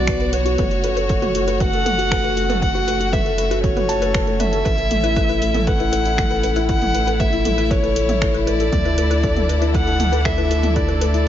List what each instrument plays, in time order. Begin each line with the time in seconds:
Already playing: sub bass B1, felt piano B3 F#4 B4, string section B3 D4 F#4, violin D5
0.07 felt piano B3, finger snap, kick, closed hi-hat
0.20 felt piano B4, synth arpeggio sound B4, closed hi-hat
0.32 felt piano B3, synth arpeggio sound B4, violin C#5, closed hi-hat
0.45 felt piano F#4, closed hi-hat
0.58 sub bass F#1, felt piano A3, string section A3 C#4, synth arpeggio sound B4, kick, closed hi-hat, mid tom
0.71 felt piano F#4, closed hi-hat
0.83 felt piano A3, synth arpeggio sound B4, closed hi-hat
0.96 felt piano A4, synth arpeggio sound B4, closed hi-hat
1.09 felt piano A3, kick, closed hi-hat
1.22 felt piano F#4, synth arpeggio sound B4, closed hi-hat, mid tom
1.34 felt piano A3, closed hi-hat
1.47 felt piano F#4, synth arpeggio sound B4, closed hi-hat
1.60 felt piano A3, synth arpeggio sound B4, violin F#5, kick, closed hi-hat
1.73 felt piano A4, closed hi-hat
1.85 felt piano A3, synth arpeggio sound B4, closed hi-hat, mid tom
1.98 felt piano F#4, closed hi-hat
2.11 felt piano A3, synth arpeggio sound B4, finger snap, kick, closed hi-hat
2.23 felt piano F#4, synth arpeggio sound B4, closed hi-hat
2.36 felt piano A3, closed hi-hat
2.49 felt piano A4, synth arpeggio sound B4, closed hi-hat, mid tom
2.62 felt piano A3, violin F#5, kick, closed hi-hat
2.74 felt piano F#4, synth arpeggio sound B4, closed hi-hat
2.87 felt piano A3, synth arpeggio sound B4, closed hi-hat
3.00 felt piano F#4, closed hi-hat
3.12 felt piano A3, synth arpeggio sound B4, violin E5, kick, closed hi-hat, mid tom
3.25 felt piano A4, closed hi-hat
3.38 felt piano A3, synth arpeggio sound B4, closed hi-hat
3.50 felt piano F#4, synth arpeggio sound B4, closed hi-hat
3.63 felt piano A3, violin C#5, kick, closed hi-hat
3.76 felt piano F#4, synth arpeggio sound B4, closed hi-hat, mid tom
3.89 felt piano A5, closed hi-hat
4.02 felt piano A4, synth arpeggio sound B4, closed hi-hat
4.14 felt piano A4, synth arpeggio sound B4, finger snap, kick, closed hi-hat
4.27 felt piano A3, closed hi-hat
4.39 synth arpeggio sound B4, felt piano C#5, violin E5, closed hi-hat, mid tom
4.52 felt piano A4, closed hi-hat
4.65 sub bass A1, felt piano A3, string section E4, synth arpeggio sound B4, kick, closed hi-hat
4.78 felt piano A4, closed hi-hat
4.91 felt piano A3, closed hi-hat, mid tom
5.03 felt piano E4, synth arpeggio sound B4, closed hi-hat
5.16 felt piano A3, synth arpeggio sound B4, kick, closed hi-hat
5.29 felt piano E4, synth arpeggio sound B4, closed hi-hat
5.42 felt piano A3, closed hi-hat
5.54 felt piano A4, closed hi-hat, mid tom
5.66 felt piano A3, synth arpeggio sound B4, violin F#5, kick, closed hi-hat
5.80 felt piano E4, synth arpeggio sound B4, closed hi-hat
5.92 felt piano A3, synth arpeggio sound B4, closed hi-hat
6.05 felt piano E4, closed hi-hat
6.18 felt piano A3, finger snap, kick, closed hi-hat, mid tom
6.30 felt piano A4, synth arpeggio sound B4, closed hi-hat
6.43 felt piano A3, synth arpeggio sound B4, closed hi-hat
6.56 felt piano E4, synth arpeggio sound B4, closed hi-hat
6.69 felt piano A3, violin F#5, kick, closed hi-hat
6.82 felt piano E4, closed hi-hat, mid tom
6.94 felt piano A3, synth arpeggio sound B4, closed hi-hat
7.07 felt piano A4, synth arpeggio sound B4, closed hi-hat
7.20 felt piano A3, synth arpeggio sound B4, violin E5, kick, closed hi-hat
7.32 felt piano E4, closed hi-hat
7.45 felt piano A3, closed hi-hat, mid tom
7.58 felt piano E4, synth arpeggio sound B4, closed hi-hat
7.70 felt piano A3, synth arpeggio sound B4, violin C#5, kick, closed hi-hat
7.83 felt piano A4, synth arpeggio sound B4, closed hi-hat
7.96 felt piano A3, closed hi-hat
8.09 felt piano E4, closed hi-hat, mid tom
8.21 felt piano A3, synth arpeggio sound B4, finger snap, kick, closed hi-hat
8.34 felt piano E4, synth arpeggio sound B4, closed hi-hat
8.46 felt piano A3, synth arpeggio sound B4, violin D5, closed hi-hat
8.60 felt piano A4, closed hi-hat
8.72 sub bass D2, string section D3 D4 A4, felt piano A3, kick, closed hi-hat, mid tom
8.85 felt piano E4, synth arpeggio sound B4, closed hi-hat
8.98 felt piano A3, synth arpeggio sound B4, closed hi-hat
9.10 felt piano E4, synth arpeggio sound B4, closed hi-hat
9.23 felt piano A3, kick, closed hi-hat
9.36 felt piano A4, closed hi-hat, mid tom
9.48 felt piano A3, synth arpeggio sound B4, closed hi-hat
9.61 felt piano E4, synth arpeggio sound B4, closed hi-hat
9.74 felt piano A3, synth arpeggio sound B4, violin F#5, kick, closed hi-hat
9.87 felt piano E4, closed hi-hat
9.99 felt piano A3, closed hi-hat, mid tom
10.12 felt piano A4, synth arpeggio sound B4, closed hi-hat
10.25 felt piano A3, synth arpeggio sound B4, violin E5, finger snap, kick, closed hi-hat
10.38 felt piano E4, synth arpeggio sound B4, closed hi-hat
10.50 felt piano A3, closed hi-hat
10.63 felt piano E4, closed hi-hat, mid tom
10.76 felt piano A3, synth arpeggio sound B4, violin D5, kick, closed hi-hat
10.88 felt piano A4, synth arpeggio sound B4, closed hi-hat
11.01 felt piano A3, synth arpeggio sound B4, closed hi-hat
11.14 felt piano E4, closed hi-hat